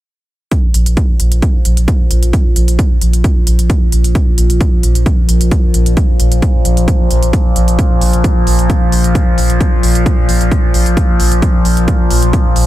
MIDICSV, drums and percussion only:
0, 0, Header, 1, 2, 480
1, 0, Start_track
1, 0, Tempo, 454545
1, 544, Time_signature, 4, 2, 24, 8
1, 13374, End_track
2, 0, Start_track
2, 0, Title_t, "Drums"
2, 544, Note_on_c, 9, 36, 120
2, 544, Note_on_c, 9, 42, 66
2, 649, Note_off_c, 9, 36, 0
2, 649, Note_off_c, 9, 42, 0
2, 784, Note_on_c, 9, 42, 87
2, 890, Note_off_c, 9, 42, 0
2, 911, Note_on_c, 9, 42, 66
2, 1016, Note_off_c, 9, 42, 0
2, 1024, Note_on_c, 9, 36, 123
2, 1024, Note_on_c, 9, 42, 61
2, 1129, Note_off_c, 9, 36, 0
2, 1129, Note_off_c, 9, 42, 0
2, 1264, Note_on_c, 9, 42, 99
2, 1369, Note_off_c, 9, 42, 0
2, 1390, Note_on_c, 9, 42, 67
2, 1496, Note_off_c, 9, 42, 0
2, 1504, Note_on_c, 9, 36, 112
2, 1504, Note_on_c, 9, 42, 62
2, 1609, Note_off_c, 9, 42, 0
2, 1610, Note_off_c, 9, 36, 0
2, 1744, Note_on_c, 9, 42, 98
2, 1849, Note_off_c, 9, 42, 0
2, 1871, Note_on_c, 9, 42, 67
2, 1976, Note_off_c, 9, 42, 0
2, 1984, Note_on_c, 9, 36, 122
2, 1985, Note_on_c, 9, 42, 69
2, 2089, Note_off_c, 9, 36, 0
2, 2090, Note_off_c, 9, 42, 0
2, 2224, Note_on_c, 9, 42, 89
2, 2330, Note_off_c, 9, 42, 0
2, 2351, Note_on_c, 9, 42, 70
2, 2457, Note_off_c, 9, 42, 0
2, 2464, Note_on_c, 9, 36, 127
2, 2464, Note_on_c, 9, 42, 69
2, 2570, Note_off_c, 9, 36, 0
2, 2570, Note_off_c, 9, 42, 0
2, 2704, Note_on_c, 9, 42, 90
2, 2810, Note_off_c, 9, 42, 0
2, 2831, Note_on_c, 9, 42, 70
2, 2936, Note_off_c, 9, 42, 0
2, 2944, Note_on_c, 9, 36, 125
2, 2944, Note_on_c, 9, 42, 65
2, 3050, Note_off_c, 9, 36, 0
2, 3050, Note_off_c, 9, 42, 0
2, 3184, Note_on_c, 9, 42, 92
2, 3289, Note_off_c, 9, 42, 0
2, 3310, Note_on_c, 9, 42, 65
2, 3416, Note_off_c, 9, 42, 0
2, 3424, Note_on_c, 9, 36, 118
2, 3424, Note_on_c, 9, 42, 63
2, 3529, Note_off_c, 9, 36, 0
2, 3529, Note_off_c, 9, 42, 0
2, 3664, Note_on_c, 9, 42, 92
2, 3769, Note_off_c, 9, 42, 0
2, 3790, Note_on_c, 9, 42, 69
2, 3896, Note_off_c, 9, 42, 0
2, 3904, Note_on_c, 9, 36, 127
2, 3904, Note_on_c, 9, 42, 70
2, 4009, Note_off_c, 9, 36, 0
2, 4010, Note_off_c, 9, 42, 0
2, 4144, Note_on_c, 9, 42, 91
2, 4249, Note_off_c, 9, 42, 0
2, 4271, Note_on_c, 9, 42, 66
2, 4376, Note_off_c, 9, 42, 0
2, 4384, Note_on_c, 9, 36, 127
2, 4384, Note_on_c, 9, 42, 64
2, 4489, Note_off_c, 9, 36, 0
2, 4489, Note_off_c, 9, 42, 0
2, 4624, Note_on_c, 9, 42, 85
2, 4729, Note_off_c, 9, 42, 0
2, 4751, Note_on_c, 9, 42, 66
2, 4856, Note_off_c, 9, 42, 0
2, 4864, Note_on_c, 9, 36, 127
2, 4864, Note_on_c, 9, 42, 62
2, 4969, Note_off_c, 9, 36, 0
2, 4969, Note_off_c, 9, 42, 0
2, 5104, Note_on_c, 9, 42, 93
2, 5210, Note_off_c, 9, 42, 0
2, 5231, Note_on_c, 9, 42, 65
2, 5336, Note_off_c, 9, 42, 0
2, 5344, Note_on_c, 9, 36, 119
2, 5344, Note_on_c, 9, 42, 58
2, 5449, Note_off_c, 9, 36, 0
2, 5449, Note_off_c, 9, 42, 0
2, 5583, Note_on_c, 9, 42, 91
2, 5689, Note_off_c, 9, 42, 0
2, 5710, Note_on_c, 9, 42, 71
2, 5816, Note_off_c, 9, 42, 0
2, 5823, Note_on_c, 9, 42, 67
2, 5824, Note_on_c, 9, 36, 120
2, 5929, Note_off_c, 9, 36, 0
2, 5929, Note_off_c, 9, 42, 0
2, 6063, Note_on_c, 9, 42, 91
2, 6168, Note_off_c, 9, 42, 0
2, 6190, Note_on_c, 9, 42, 65
2, 6296, Note_off_c, 9, 42, 0
2, 6303, Note_on_c, 9, 42, 62
2, 6304, Note_on_c, 9, 36, 126
2, 6409, Note_off_c, 9, 36, 0
2, 6409, Note_off_c, 9, 42, 0
2, 6543, Note_on_c, 9, 42, 85
2, 6649, Note_off_c, 9, 42, 0
2, 6670, Note_on_c, 9, 42, 64
2, 6776, Note_off_c, 9, 42, 0
2, 6783, Note_on_c, 9, 36, 126
2, 6783, Note_on_c, 9, 42, 64
2, 6889, Note_off_c, 9, 36, 0
2, 6889, Note_off_c, 9, 42, 0
2, 7023, Note_on_c, 9, 42, 96
2, 7129, Note_off_c, 9, 42, 0
2, 7150, Note_on_c, 9, 42, 60
2, 7256, Note_off_c, 9, 42, 0
2, 7263, Note_on_c, 9, 36, 115
2, 7264, Note_on_c, 9, 42, 62
2, 7369, Note_off_c, 9, 36, 0
2, 7369, Note_off_c, 9, 42, 0
2, 7504, Note_on_c, 9, 42, 93
2, 7609, Note_off_c, 9, 42, 0
2, 7630, Note_on_c, 9, 42, 67
2, 7736, Note_off_c, 9, 42, 0
2, 7743, Note_on_c, 9, 36, 123
2, 7743, Note_on_c, 9, 42, 64
2, 7849, Note_off_c, 9, 36, 0
2, 7849, Note_off_c, 9, 42, 0
2, 7983, Note_on_c, 9, 42, 85
2, 8088, Note_off_c, 9, 42, 0
2, 8110, Note_on_c, 9, 42, 63
2, 8215, Note_off_c, 9, 42, 0
2, 8223, Note_on_c, 9, 36, 117
2, 8223, Note_on_c, 9, 42, 60
2, 8329, Note_off_c, 9, 36, 0
2, 8329, Note_off_c, 9, 42, 0
2, 8463, Note_on_c, 9, 46, 98
2, 8569, Note_off_c, 9, 46, 0
2, 8590, Note_on_c, 9, 42, 63
2, 8696, Note_off_c, 9, 42, 0
2, 8703, Note_on_c, 9, 36, 120
2, 8704, Note_on_c, 9, 42, 59
2, 8809, Note_off_c, 9, 36, 0
2, 8809, Note_off_c, 9, 42, 0
2, 8944, Note_on_c, 9, 46, 93
2, 9049, Note_off_c, 9, 46, 0
2, 9071, Note_on_c, 9, 42, 59
2, 9176, Note_off_c, 9, 42, 0
2, 9183, Note_on_c, 9, 36, 108
2, 9184, Note_on_c, 9, 42, 55
2, 9289, Note_off_c, 9, 36, 0
2, 9289, Note_off_c, 9, 42, 0
2, 9424, Note_on_c, 9, 46, 106
2, 9529, Note_off_c, 9, 46, 0
2, 9550, Note_on_c, 9, 42, 63
2, 9656, Note_off_c, 9, 42, 0
2, 9663, Note_on_c, 9, 36, 125
2, 9664, Note_on_c, 9, 42, 64
2, 9769, Note_off_c, 9, 36, 0
2, 9769, Note_off_c, 9, 42, 0
2, 9904, Note_on_c, 9, 46, 88
2, 10009, Note_off_c, 9, 46, 0
2, 10030, Note_on_c, 9, 42, 63
2, 10136, Note_off_c, 9, 42, 0
2, 10143, Note_on_c, 9, 36, 115
2, 10144, Note_on_c, 9, 42, 62
2, 10249, Note_off_c, 9, 36, 0
2, 10249, Note_off_c, 9, 42, 0
2, 10384, Note_on_c, 9, 46, 98
2, 10490, Note_off_c, 9, 46, 0
2, 10511, Note_on_c, 9, 42, 64
2, 10617, Note_off_c, 9, 42, 0
2, 10623, Note_on_c, 9, 36, 116
2, 10624, Note_on_c, 9, 42, 61
2, 10729, Note_off_c, 9, 36, 0
2, 10730, Note_off_c, 9, 42, 0
2, 10864, Note_on_c, 9, 46, 92
2, 10970, Note_off_c, 9, 46, 0
2, 10991, Note_on_c, 9, 42, 62
2, 11097, Note_off_c, 9, 42, 0
2, 11104, Note_on_c, 9, 36, 111
2, 11104, Note_on_c, 9, 42, 55
2, 11209, Note_off_c, 9, 36, 0
2, 11210, Note_off_c, 9, 42, 0
2, 11344, Note_on_c, 9, 46, 100
2, 11449, Note_off_c, 9, 46, 0
2, 11470, Note_on_c, 9, 42, 62
2, 11576, Note_off_c, 9, 42, 0
2, 11584, Note_on_c, 9, 36, 119
2, 11584, Note_on_c, 9, 42, 65
2, 11689, Note_off_c, 9, 36, 0
2, 11689, Note_off_c, 9, 42, 0
2, 11824, Note_on_c, 9, 46, 89
2, 11929, Note_off_c, 9, 46, 0
2, 11951, Note_on_c, 9, 42, 63
2, 12056, Note_off_c, 9, 42, 0
2, 12064, Note_on_c, 9, 36, 114
2, 12064, Note_on_c, 9, 42, 65
2, 12169, Note_off_c, 9, 36, 0
2, 12169, Note_off_c, 9, 42, 0
2, 12303, Note_on_c, 9, 46, 91
2, 12409, Note_off_c, 9, 46, 0
2, 12430, Note_on_c, 9, 42, 63
2, 12536, Note_off_c, 9, 42, 0
2, 12543, Note_on_c, 9, 42, 60
2, 12544, Note_on_c, 9, 36, 111
2, 12649, Note_off_c, 9, 36, 0
2, 12649, Note_off_c, 9, 42, 0
2, 12783, Note_on_c, 9, 46, 93
2, 12889, Note_off_c, 9, 46, 0
2, 12910, Note_on_c, 9, 42, 66
2, 13016, Note_off_c, 9, 42, 0
2, 13023, Note_on_c, 9, 42, 58
2, 13024, Note_on_c, 9, 36, 107
2, 13129, Note_off_c, 9, 36, 0
2, 13129, Note_off_c, 9, 42, 0
2, 13263, Note_on_c, 9, 46, 99
2, 13369, Note_off_c, 9, 46, 0
2, 13374, End_track
0, 0, End_of_file